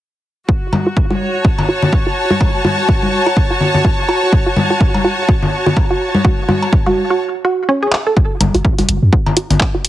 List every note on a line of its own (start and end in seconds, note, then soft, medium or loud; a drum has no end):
0.49 0.53 F#4 medium
0.49 7.21 F#4 medium
0.49 kick loud
0.73 cowbell medium
0.73 high conga medium
0.73 low conga medium
0.86 0.90 F#4 medium
0.97 kick loud
1.10 1.14 F#4 medium
1.10 7.21 C#5 medium
1.10 high conga medium
1.41 7.21 A5 medium
1.45 1.49 F#4 medium
1.45 kick loud
1.58 cowbell medium
1.58 low conga medium
1.69 1.73 F#4 medium
1.82 low conga medium
1.93 kick loud
2.06 2.10 F#4 medium
2.30 2.34 F#4 medium
2.30 high conga medium
2.41 kick loud
2.41 cowbell medium
2.65 2.69 F#4 medium
2.65 high conga medium
2.65 low conga medium
2.89 2.93 F#4 medium
2.89 kick loud
3.02 high conga medium
3.26 3.29 F#4 medium
3.26 cowbell medium
3.37 kick loud
3.50 3.54 F#4 medium
3.61 low conga medium
3.74 low conga medium
3.85 3.89 F#4 medium
3.85 kick loud
4.09 4.13 F#4 medium
4.09 cowbell medium
4.33 kick loud
4.46 4.49 F#4 medium
4.57 high conga medium
4.57 low conga medium
4.70 4.73 F#4 medium
4.81 kick loud
4.94 cowbell medium
4.94 high conga medium
5.05 5.09 F#4 medium
5.29 5.33 F#4 medium
5.29 kick loud
5.42 low conga medium
5.66 5.69 F#4 medium
5.66 low conga medium
5.77 kick loud
5.77 cowbell medium
5.90 5.94 F#4 medium
6.15 high conga medium
6.25 6.29 F#4 medium
6.25 kick loud
6.49 6.53 F#4 medium
6.49 high conga medium
6.49 low conga medium
6.62 cowbell medium
6.73 kick loud
6.86 6.89 F#4 medium
6.86 high conga medium
7.10 7.14 F#4 medium
7.45 7.49 F#4 medium
7.69 7.73 C#4 medium
7.83 7.86 G#4 medium
7.93 clap medium
8.07 8.11 A4 medium
8.17 8.21 F#4 medium
8.17 kick loud
8.41 8.50 F#1 medium
8.41 closed hi-hat medium
8.41 cowbell medium
8.41 high conga medium
8.41 low conga medium
8.54 8.61 F#1 medium
8.54 8.58 F#4 medium
8.54 closed hi-hat soft
8.65 kick loud
8.78 8.85 E1 medium
8.78 8.82 F#4 medium
8.78 closed hi-hat soft
8.78 high conga medium
8.89 8.98 F#1 medium
8.89 closed hi-hat medium
9.02 9.09 F#2 medium
9.13 9.17 F#4 medium
9.13 kick loud
9.26 cowbell medium
9.26 low conga medium
9.37 9.41 F#4 medium
9.37 closed hi-hat medium
9.50 9.57 F#1 loud
9.50 closed hi-hat soft
9.50 low conga medium
9.61 kick loud
9.61 clap loud
9.75 9.78 F#4 medium
9.85 closed hi-hat medium